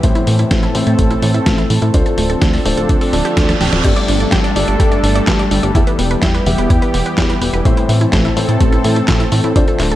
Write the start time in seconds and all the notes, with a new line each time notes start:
Already playing: E3
0.03 A1 A2 A3 C4 E4 A4 C5, kick, closed hi-hat
0.15 E4, closed hi-hat
0.27 A2 E3, open hi-hat
0.39 E4, closed hi-hat
0.51 A1 A3, kick, snare, closed hi-hat
0.63 E4, closed hi-hat
0.75 A2 E3 A3 C4 E4 C5, open hi-hat
0.87 A2 E4, closed hi-hat
0.99 A1 A3, kick, closed hi-hat
1.11 E4, closed hi-hat
1.22 A2 E3, open hi-hat
1.34 E4, closed hi-hat
1.46 A1 A3, kick, snare, closed hi-hat
1.58 E4, closed hi-hat
1.70 A2 E3, open hi-hat
1.82 A2 E4, closed hi-hat
1.94 D2 D3 F3 A3 C4 D4 F4 A4 C5, kick, closed hi-hat
2.06 A4, closed hi-hat
2.18 D1 A3, open hi-hat
2.30 A4, closed hi-hat
2.42 D2 D4, kick, snare, closed hi-hat
2.53 A4, open hi-hat
2.65 D1 D3 A3 D4 F4 C5, open hi-hat
2.77 D1 A4, closed hi-hat
2.89 D2 D4, kick, closed hi-hat, reverse cymbal
3.01 A4, open hi-hat
3.13 D1 D3 A3 D4 F4 D5, open hi-hat
3.25 G4, closed hi-hat
3.37 D2 D4, kick, snare, closed hi-hat
3.49 A4, snare, closed hi-hat
3.61 D1 G4, snare, open hi-hat
3.73 D1 D5, snare, closed hi-hat
3.84 G2 G3 A3 D4 G4 A4 D5, kick, closed hi-hat, crash, downlifter
3.96 D5, closed hi-hat
4.08 G1 D4, open hi-hat
4.20 D5, closed hi-hat
4.32 G2 G4, kick, snare, clap, closed hi-hat
4.44 D5, closed hi-hat
4.56 G1 G2 A3 D4 G4 D5, open hi-hat
4.68 G1 D5, closed hi-hat
4.80 G2 G4, kick, closed hi-hat
4.92 D5, closed hi-hat
5.04 G1 D4, open hi-hat
5.15 D5, closed hi-hat
5.27 G2 G4, kick, snare, clap, closed hi-hat
5.39 D5, closed hi-hat
5.51 G1 D4, open hi-hat
5.63 G1 D5, closed hi-hat
5.75 E2 E3 B3 E4 G4 E5, kick, closed hi-hat
5.87 B4, closed hi-hat
5.99 E1 B3, open hi-hat
6.11 B4, closed hi-hat
6.22 E2 E4, kick, snare, clap, closed hi-hat
6.35 B4, closed hi-hat
6.46 E1 E3 B3 E4 G4 E5, open hi-hat
6.58 E1 B4, closed hi-hat
6.70 E2 E4, kick, closed hi-hat
6.82 B4, closed hi-hat
6.94 E1 B3, open hi-hat
7.06 B4, closed hi-hat
7.18 E2 E4, kick, snare, clap, closed hi-hat
7.30 B4, closed hi-hat
7.41 E1 B3, open hi-hat
7.53 E1 B4, closed hi-hat
7.65 A1 A2 A3 C4 E4 A4 C5, kick, closed hi-hat
7.77 E4, closed hi-hat
7.89 A2 E3, open hi-hat
8.01 E4, closed hi-hat
8.13 A1 A3, kick, snare, clap, closed hi-hat
8.25 E4, closed hi-hat
8.37 A2 E3 A3 C4 E4 C5, open hi-hat
8.49 A2 E4, closed hi-hat
8.61 A1 A3, kick, closed hi-hat
8.72 E4, closed hi-hat
8.84 A2 E3, open hi-hat
8.96 E4, closed hi-hat
9.08 A1 A3, kick, snare, clap, closed hi-hat
9.20 E4, closed hi-hat
9.32 A2 E3, open hi-hat
9.44 A2 E4, closed hi-hat
9.56 D2 D3 A3 C4 D4 F4 C5, kick, closed hi-hat
9.68 A4, closed hi-hat
9.80 D1 A3, clap, open hi-hat
9.91 A4, closed hi-hat